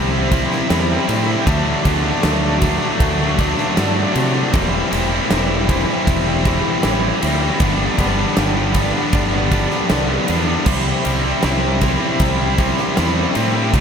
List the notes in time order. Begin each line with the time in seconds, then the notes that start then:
Already playing: C2 C3 G3 C4 E4 C5 B5
0.11 G3 C4 E4
0.30 C3 G3 C4 E4, kick, ride
0.50 G3 C4 E4, snare
0.69 E2 C3 G3 C4 E4, snare, ride
0.89 G3 C4 E4
1.08 A2 C3 G3 C4 E4, ride
1.27 G3 C4 E4
1.45 D2 D3 F#3 A3 F#4 D5 A5, kick, ride
1.49 D4
1.84 D2 D3 F#3 A3 D4, kick, ride
2.04 F#3 A3 D4
2.23 D2 D3 F#3 A3 D4, snare, ride
2.61 D3 F#3 A3 D4, kick, ride
2.80 F#3 A3 D4
3.00 D2, kick, ride
3.18 F#3 A3 D4
3.37 D3 F#3 A3 D4, kick, ride
3.57 F#3 A3 D4, snare
3.76 G2 D3 F#3 A3 D4, snare, ride
3.95 F#3 A3 D4
4.14 C3 D3 F#3 A3 D4, ride
4.34 F#3 A3 D4
4.53 E1 E3 G3 C4 E4 B5, kick, ride
4.57 C5
4.91 E1 E3 G3 C4 E4, ride
5.10 G3 C4 E4
5.30 E1 E3 G3 C4 E4, snare, ride
5.67 E3 G3 C4 E4, kick, ride
5.86 G3 C4 E4
6.07 E1, kick, ride
6.25 G3 C4 E4
6.44 E3 G3 C4, kick, ride
6.48 E4
6.63 G3 C4 E4
6.81 E3 G3 C4 E4, snare, ride
6.85 A1
7.00 G3 C4 E4
7.20 D2 E3 G3 C4 E4, ride
7.40 G3 C4 E4
7.59 G1 G2 D3 G3 B3 D4 G4 D5, kick, ride
7.98 G1 D3 G3 B3 D4, kick, ride
8.17 G3 B3 D4
8.35 G1 G2 D3 G3 B3 D4, snare, ride
8.74 D3 G3 B3 D4, kick, ride
8.93 G3 B3 D4
9.13 G1, kick, ride
9.31 G3 B3 D4
9.51 D3 G3 B3 D4, kick, ride
9.70 G3 B3 D4, snare
9.88 C2 G2 D3 G3 B3 D4, snare, ride
10.07 G3 B3 D4
10.25 E2 D3 G3 B3 D4, ride
10.45 G3 B3 D4
10.64 C2 C3 G3 C4 E4 C5 B5, kick, crash
11.03 C2 C3 G3 C4, ride
11.07 E4
11.22 G3 C4 E4
11.41 C2 C3 G3 C4 E4, snare, ride
11.79 C3 G3 C4 E4, kick, ride
11.99 C4 E4
12.03 G3
12.20 C2, kick, ride
12.38 G3 C4 E4
12.57 C3 G3 C4 E4, kick, ride
12.77 G3 C4 E4, snare
12.95 E2 C3 G3 C4 E4, snare, ride
13.15 G3 C4 E4
13.34 A2 C3 G3 C4 E4, ride
13.53 G3 C4 E4
13.71 D2 D3 F#3 A3 D4 F#4 D5 A5, kick, ride